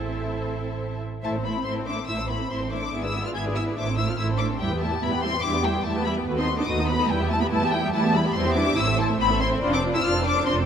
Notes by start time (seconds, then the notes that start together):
Already playing: A1 C4 E4 A4 C5 E5 A5
1.22 A1 A3 E4 C5 E5 A5
1.33 C4 A4 C5
1.43 A3 B3 E4 C5 E5 B5
1.53 C4 A4 C5
1.64 A1 A3 C4 E4 C5 E5 C6
1.75 C4 A4 C5
1.86 A3 D4 C5 E5 D6
1.90 E4
1.96 C4 A4 C5
2.07 A1 A3 E4 C5 E5 E6
2.18 C4 A4 C5
2.27 A3 B3 E4 C5 E5 B5
2.38 C4 A4 C5
2.49 A1 A3 C4 E4 C5 E5 C6
2.60 C4 A4 C5
2.70 A3 D4 E4 C5 E5 D6
2.82 C4 A4 C5
2.93 G#1 B3 E4 G#4 E5
3.02 D4 E4 G#4 B4 D5 E6
3.13 B3 E4 G#4 E5
3.23 D4 F4 G#4 B4 D5 F6
3.34 G#1 B3 E4 G#4 E5 G#6
3.44 D4 G#4 B4 D5
3.54 B3 E4 G#4 E5 E6
3.66 D4 G#4 B4 D5
3.76 A1 A3 D4 E4 C5 E5 D6
3.86 C4 A4 C5
3.97 A3 E4 C5 E5 E6
4.07 C4 F4 A4 C5 F6
4.17 A1 A3 E4 C5 E5 E6
4.28 C4 A4 C5
4.38 A3 D4 E4 C5 E5 D6
4.48 C4 A4 C5
4.59 E2 G3 E4 G4 E5 G5
4.70 B3 G4 B4 G5
4.80 G3 A3 E4 G4 E5 A5
4.91 B3 G4 B4 G5
5.01 E2 G3 B3 E4 G4 E5 B5
5.12 B3 G4 B4 G5
5.22 G3 C4 E4 G4 E5 C6
5.32 B3 G4 B4 G5
5.42 E2 G3 D4 E4 G4 E5 D6
5.53 B3 G4 B4 G5
5.63 G3 E4 G4 E5 G5
5.74 B3 G4 B4 G5
5.84 E2 G3 A3 E4 G4 E5 A5
5.96 B3 G4 B4 G5
6.05 G3 B3 E4 G4 E5 B5
6.17 B3 G4 B4 G5
6.27 D#2 A3 F#4 B4
6.37 B3 C4 D#4 A4 D#5 C6
6.47 A3 F#4 B4
6.57 B3 D4 D#4 A4 D#5 D6
6.68 D#2 A3 D#4 F#4 B4 D#6
6.79 B3 D#4 A4 D#5
6.87 A3 B3 F#4 B4 B5
6.99 B3 D#4 A4 D#5
7.08 E2 G3 E4 B4 G5
7.21 B3 G4 E5
7.29 G3 A3 E4 B4 A5
7.40 B3 G4 E5 B5
7.49 E2 G3 A3 E4 B4 A5
7.61 B3 G4 E5
7.71 G3 E4 B4 G5
7.81 B3 G4 E5
7.91 E2 G3 A3 E4 B4 A5
8.02 B3 G4 E5
8.13 G3 B3 E4 B4 B5
8.24 B3 G4 E5
8.34 E2 G3 C4 E4 B4 C6
8.44 B3 G4 E5
8.54 G3 D4 E4 B4 D6
8.65 B3 G4 E5
8.76 A1 C4 E4 C5 E6
8.87 A3 C4 A4 E5
8.97 A3 C4 E4 C5 A5
9.08 A3 C4 A4 E5
9.18 A1 B3 C4 E4 C5 B5
9.29 A3 C4 A4 E5
9.39 C4 E4 C5 C6
9.51 A3 C4 A4 E5
9.60 F1 D4 F4 C5 D5
9.71 C4 D4 A4 C5 D6
9.81 D4 F4 C5 D5
9.90 E4 A4 C5 E6
9.95 C4 D4
10.01 F1 F4 C5 D5 F6
10.05 D4 F4
10.12 C4 A4 C5
10.16 D4
10.23 D4 F4 C5 D5
10.27 D6
10.33 A4 C5
10.37 C4 D4
10.43 F1 C4 C5 D5 C6
10.48 D4 F4
10.55 C4 D4 A4 C5